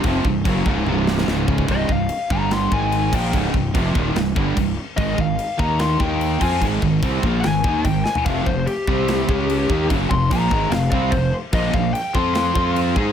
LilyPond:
<<
  \new Staff \with { instrumentName = "Lead electric guitar" } { \time 4/4 \key des \lydian \tempo 4 = 146 r1 | \key c \minor ees''8 f''4 bes''8 c'''8 aes''4 g''8 | r1 | ees''8 f''4 bes''8 c'''8 g''4 aes''8 |
r2 aes''4 g''8 aes''8 | f''8 c''8 g'2. | r8 c'''8 bes''4 f''8 f''8 c''8 r8 | ees''8 f''8 g''8 c'''8 c'''4 r4 | }
  \new Staff \with { instrumentName = "Distorted electric guitar" } { \clef bass \time 4/4 \key des \lydian <f, c f>8 <c, g,>8 <fis, des fis>8 <des, aes, des>8 <c, g, c>4 <des, aes, des>4 | \key c \minor <c, g, c>8 <c, g,>8 r8 <g, d g>4 <aes, ees aes>4 <bes, f bes>8 | <des, aes, des>8 <c, g,>8 <f, c f>8 <ees, bes, ees>8 <c, g,>8 <g, d g>8 <c, g,>8 r8 | <aes, ees aes>8 <aes, ees>8 r8 <ees bes ees'>4 <ees bes ees'>4 <f c' f'>8 |
<aes, ees aes>8 <aes, ees>8 <c g c'>8 <bes, f bes>8 <aes, ees>8 <ees bes ees'>8 <aes, ees>8 r8 | <f, c f>8 <f, c>8 r8 <c g c'>4 <des aes des'>4 <ees bes ees'>8 | <fis, des fis>8 <f, c>8 <bes, f bes>8 <aes, ees aes>8 <f, c>8 <c g c'>8 <f, c>8 r8 | <bes, f bes>8 <bes, f>8 r8 <f c' f'>4 <f c' f'>4 <aes ees' aes'>8 | }
  \new Staff \with { instrumentName = "Distorted electric guitar" } { \clef bass \time 4/4 \key des \lydian <f, c f>8 <c, g,>8 <fis, des fis>8 <des, aes, des>8 <c, g, c>4 <des, aes, des>4 | \key c \minor <c, g, c>8 <c, g,>8 r8 <g, d g>4 <aes, ees aes>4 <bes, f bes>8 | <des, aes, des>8 <c, g,>8 <f, c f>8 <ees, bes, ees>8 <c, g,>8 <g, d g>8 <c, g,>8 r8 | <aes, ees aes>8 <aes, ees>8 r8 <ees bes ees'>4 <ees bes ees'>4 <f c' f'>8 |
<aes, ees aes>8 <aes, ees>8 <c g c'>8 <bes, f bes>8 <aes, ees>8 <ees bes ees'>8 <aes, ees>8 r8 | <f, c f>8 <f, c>8 r8 <c g c'>4 <des aes des'>4 <ees bes ees'>8 | <fis, des fis>8 <f, c>8 <bes, f bes>8 <aes, ees aes>8 <f, c>8 <c g c'>8 <f, c>8 r8 | <bes, f bes>8 <bes, f>8 r8 <f c' f'>4 <f c' f'>4 <aes ees' aes'>8 | }
  \new Staff \with { instrumentName = "Overdriven electric guitar" } { \clef bass \time 4/4 \key des \lydian <f, c f>8 <c, g,>8 <fis, des fis>8 <des, aes, des>8 <c, g, c>4 <des, aes, des>4 | \key c \minor <c, g, c>8 <c, g,>8 r8 <g, d g>4 <aes, ees aes>4 <bes, f bes>8 | <des, aes, des>8 <c, g,>8 <f, c f>8 <ees, bes, ees>8 <c, g,>8 <g, d g>8 <c, g,>8 r8 | <aes, ees aes>8 <aes, ees>8 r8 <ees bes ees'>4 <ees bes ees'>4 <f c' f'>8 |
<aes, ees aes>8 <aes, ees>8 <c g c'>8 <bes, f bes>8 <aes, ees>8 <ees bes ees'>8 <aes, ees>8 r8 | <f, c f>8 <f, c>8 r8 <c g c'>4 <des aes des'>4 <ees bes ees'>8 | <fis, des fis>8 <f, c>8 <bes, f bes>8 <aes, ees aes>8 <f, c>8 <c g c'>8 <f, c>8 r8 | <bes, f bes>8 <bes, f>8 r8 <f c' f'>4 <f c' f'>4 <aes ees' aes'>8 | }
  \new Staff \with { instrumentName = "Fingered electric bass" } { \clef bass \time 4/4 \key des \lydian f,,8 c,,8 fis,,8 des,,8 c,,4 des,,4 | \key c \minor c,,8 c,,8 r8 g,,4 aes,,4 bes,,8 | des,,8 c,,8 f,,8 ees,,8 c,,8 g,,8 c,,8 r8 | aes,,8 aes,,8 r8 ees,4 ees,4 f,8 |
aes,,8 aes,,8 c,8 bes,,8 aes,,8 ees,8 aes,,8 r8 | f,,8 f,,8 r8 c,4 des,4 ees,8 | fis,,8 f,,8 bes,,8 aes,,8 f,,8 c,8 f,,8 r8 | bes,,8 bes,,8 r8 f,4 f,4 aes,8 | }
  \new DrumStaff \with { instrumentName = "Drums" } \drummode { \time 4/4 <cymc bd>8 bd8 <cymc bd>8 bd8 tommh8 sn16 sn16 sn8 bd16 bd16 | <cymc bd>8 bd8 cymc8 bd8 <cymc sn>8 bd8 cymc8 <cymc bd>8 | <cymc bd>8 bd8 <cymc bd>8 bd8 <cymc sn>8 bd8 <cymc bd>4 | <cymc bd>8 bd8 cymc8 bd8 <cymc sn>8 bd8 cymc8 <cymc bd>8 |
<cymc bd>8 bd8 <cymc bd>8 bd8 <cymc sn>8 bd8 <cymc bd>8 sn16 tomfh16 | <cymc bd>8 bd8 cymc8 bd8 <cymc sn>8 bd8 cymc8 bd8 | <cymc bd>8 bd8 <cymc bd>8 bd8 <cymc sn>8 bd8 <cymc bd>4 | <cymc bd>8 bd8 cymc8 bd8 <cymc sn>8 bd8 cymc8 bd8 | }
>>